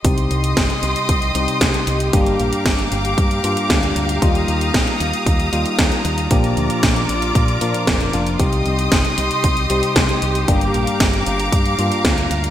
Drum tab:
HH |xxxxxxxxxxxxxxxx|xxxxxxxxxxxxxxxx|xxxxxxxxxxxxxxxx|xxxxxxxxxxxxxxxx|
SD |----o-------o---|----o-------o---|----o-------o---|----o-------o---|
BD |o---o---o---o---|o---o---o---o---|o---o---o---o---|o---o---o---o---|

HH |xxxxxxxxxxxxxxxx|xxxxxxxxxxxxxxxx|
SD |----o-------o---|----o-------o---|
BD |o---o---o---o---|o---o---o---o---|